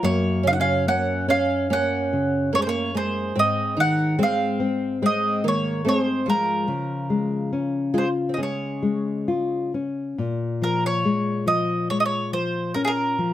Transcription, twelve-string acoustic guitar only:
0.03 0.42 A#3 medium
0.43 0.50 C#4 medium
0.51 0.57 D#4 medium
0.60 0.85 C#4 medium
0.88 1.26 C#4 medium
1.29 1.67 C#4 medium
1.70 2.49 C#4 medium
2.53 2.58 A#3 medium
2.58 2.65 G#3 medium
2.67 2.92 A#3 medium
2.95 3.32 G#3 medium
3.36 3.74 C4 medium
3.77 4.15 D#4 medium
4.19 4.98 C4 medium
5.03 5.41 C4 medium
5.44 5.82 A#3 medium
5.85 6.23 G#3 medium
6.26 7.90 F3 medium
7.94 8.04 G#3 medium
8.29 8.36 C4 soft
8.37 9.68 G#3 medium

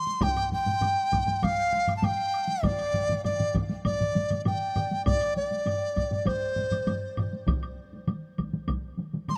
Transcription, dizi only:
0.00 0.25 C6 medium
0.23 0.52 G5 medium
0.53 1.36 G5 medium
1.36 1.45 G5 medium
1.44 1.96 F5 medium
1.97 2.06 A5 medium
2.05 2.66 G5 medium
2.65 3.24 D5 medium
3.25 3.56 D5 medium
3.86 4.42 D5 medium
4.47 5.03 G5 medium
5.06 5.34 D5 medium
5.37 6.28 D5 medium
6.27 7.17 C5 medium
9.29 9.37 C6 medium

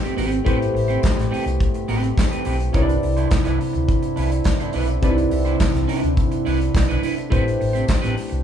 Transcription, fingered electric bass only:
0.18 0.39 G#1 medium
0.47 0.68 A1 loud
0.75 0.96 A1 medium
1.18 1.28 A1 medium
1.46 1.56 C2 medium
1.89 2.10 A1 medium
2.47 2.67 B1 loud
2.75 2.96 C2 loud
3.03 3.24 C2 medium
3.46 3.57 C2 medium
3.75 3.85 D2 medium
4.18 4.39 C2 medium
4.75 4.96 B1 medium
5.03 5.24 C2 loud
5.32 5.53 C2 medium
5.75 5.85 C2 medium
6.03 6.14 D2 medium
6.47 6.67 C2 medium
6.75 6.96 B1 medium
7.32 7.53 A1 medium
7.61 7.82 A1 medium
8.04 8.14 A1 medium
8.32 8.42 C2 medium

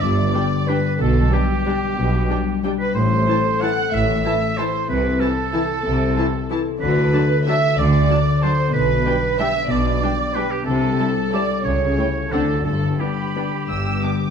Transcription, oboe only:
0.01 0.70 D5 medium
0.68 1.00 B4 medium
1.01 1.35 A4 medium
1.33 2.64 G4 medium
2.79 2.94 B4 medium
2.95 3.63 C5 medium
3.61 3.95 F#5 medium
3.94 4.59 E5 medium
4.57 4.89 C5 medium
4.89 5.21 B4 medium
5.20 6.50 A4 medium
6.81 7.43 B4 medium
7.48 7.80 E5 medium
7.79 8.44 D5 medium
8.43 8.73 C5 medium
8.73 9.37 B4 medium
9.39 9.73 E5 medium
9.71 10.36 D5 medium
10.35 10.52 B4 medium
10.51 10.65 G4 medium
10.66 11.31 A4 medium
11.34 11.66 D5 medium
11.65 12.33 C#5 medium
12.32 12.64 A4 medium
12.65 13.02 A4 medium
13.00 14.30 G4 soft

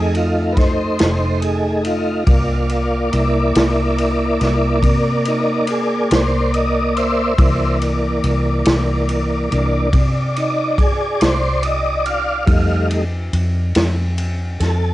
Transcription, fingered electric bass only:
0.00 0.96 F2 loud
1.01 2.24 F1 medium
2.27 3.09 C2 medium
3.13 3.53 C2 medium
3.56 4.37 C2 medium
4.41 4.80 C2 medium
4.83 6.07 C3 medium
6.12 7.35 C2 medium
7.39 8.20 C2 medium
8.24 8.63 C2 medium
8.67 9.48 C2 medium
9.52 9.91 C2 medium
9.94 11.17 C3 loud
11.22 12.45 C2 medium
12.47 13.29 F2 medium
13.33 13.73 F2 medium
13.76 14.57 F2 medium
14.60 14.94 F2 medium

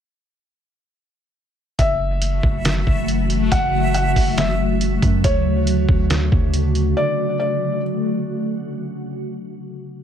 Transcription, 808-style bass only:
1.79 2.41 F#1 loud
2.43 2.85 F#1 loud
2.87 3.49 F#1 loud
3.52 4.14 F#1 loud
4.16 4.99 F#1 loud
5.02 5.23 F#2 loud
5.24 5.86 D2 loud
5.89 6.30 D2 loud
6.32 6.94 D2 loud

